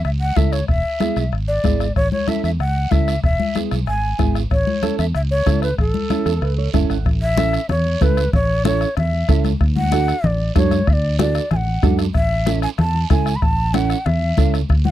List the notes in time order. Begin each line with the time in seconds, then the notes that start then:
0.05 C#2 E5, bombo rim, long guiro
0.21 F#5
0.36 C#2 C#4 E4 A4 E5, bombo low, bombo rim, high conga, short guiro
0.52 C#5, bombo rim, short guiro
0.68 E1 E5, bombo low, bombo rim, long guiro
1.00 B3 E4 G#4, bombo rim, high conga, short guiro
1.16 B1, bombo rim, short guiro
1.32 G#1, bombo rim, long guiro
1.48 D5
1.64 G#1 B3 E4 G#4, bombo low, bombo rim, high conga, short guiro
1.80 bombo rim, short guiro
1.96 A1 C#5, bombo low, bombo rim, long guiro
2.12 C#5, high conga
2.28 C#4 E4 A4 E5, bombo rim, high conga, short guiro
2.44 E2 E5, bombo rim, short guiro
2.59 C#2 F#5, bombo rim, long guiro
2.91 C#2 C#4 E4 A4 E5, bombo low, bombo rim, high conga, short guiro
3.08 bombo rim, short guiro
3.23 E1 E5, bombo low, bombo rim, long guiro
3.40 high conga
3.55 B3 E4 G#4, bombo rim, high conga, short guiro
3.71 B1, bombo rim, short guiro
3.87 G#1 G#5, bombo rim, long guiro
4.19 G#1 B3 E4 G#4, bombo low, bombo rim, high conga, short guiro
4.35 bombo rim, short guiro
4.51 A1 C#5, bombo low, bombo rim, long guiro
4.67 high conga
4.82 C#4 E4 A4, bombo rim, high conga, short guiro
4.99 E2 E5, bombo rim, short guiro
5.15 C#2 E5, bombo rim, long guiro
5.31 C#5
5.46 C#2 C#4 E4 A4, bombo low, bombo rim, high conga, short guiro
5.62 B4, bombo rim, short guiro
5.78 A1 A4, bombo low, bombo rim, long guiro
5.94 high conga
6.10 C#4 E4 A4, bombo rim, high conga, short guiro
6.26 E2 A4, bombo rim, short guiro
6.42 C#2 B4, bombo rim, long guiro
6.58 C#5
6.74 F#1 C#4 E4 A4 E5, bombo low, bombo rim, high conga, short guiro
6.90 G#1 F#5, bombo rim, short guiro
7.06 A1, bombo low, bombo rim, high conga, long guiro
7.22 E5
7.37 C#4 E4 A4, bombo rim, high conga, short guiro
7.53 bombo rim, short guiro
7.69 E2 C#5, bombo rim, low conga, long guiro
7.86 high conga
8.01 C#2 C#4 E4 A4 B4, bombo low, bombo rim, high conga, short guiro
8.17 bombo rim, short guiro
8.33 A1 C#5, bombo low, bombo rim, high conga, low conga, long guiro
8.64 C#4 E4 A4 C#5, bombo rim, high conga, short guiro
8.81 bombo rim, short guiro
8.97 E2 E5, bombo rim, low conga, long guiro
9.13 high conga
9.28 C#2 C#4 E4 A4, bombo low, bombo rim, high conga, short guiro
9.44 bombo rim, high conga, short guiro
9.61 D2, bombo low, bombo rim, high conga, long guiro
9.76 F#5, high conga
9.92 D4 F#4 A4, bombo rim, high conga, short guiro
10.08 bombo rim, short guiro
10.24 A1 D5, bombo rim, low conga, long guiro
10.40 high conga
10.55 F#2 D4 F#4 A4 C#5, bombo low, bombo rim, high conga, short guiro
10.71 bombo rim, high conga, short guiro
10.87 D2 E5, bombo low, bombo rim, high conga, long guiro
10.93 D5
11.19 D4 F#4 A4 D5, bombo rim, high conga, short guiro
11.35 bombo rim, short guiro
11.51 A1 G#5, bombo rim, low conga, long guiro
11.56 F#5
11.67 high conga
11.83 F#2 D4 F#4 A4, bombo low, bombo rim, high conga, short guiro
11.99 bombo rim, short guiro
12.14 A1 E5, bombo low, bombo rim, high conga, long guiro
12.46 C#4 E4 A4, bombo rim, high conga, short guiro
12.62 G#5, bombo rim, short guiro
12.78 E2 A5, bombo rim, low conga, long guiro
12.95 high conga
13.10 C#2 C#4 E4 A4 G#5, bombo low, bombo rim, high conga, short guiro
13.26 bombo rim, short guiro
13.36 B5
13.42 A1 A5, bombo low, bombo rim, high conga, long guiro
13.74 C#4 E4 A4 F#5, bombo rim, high conga, short guiro
13.90 bombo rim, short guiro
14.06 E2 E5, bombo rim, low conga, long guiro
14.22 high conga
14.37 C#2 C#4 E4 A4, bombo low, bombo rim, high conga, short guiro
14.54 bombo rim, short guiro
14.69 D2, bombo low, bombo rim, high conga, long guiro
14.85 F#5, high conga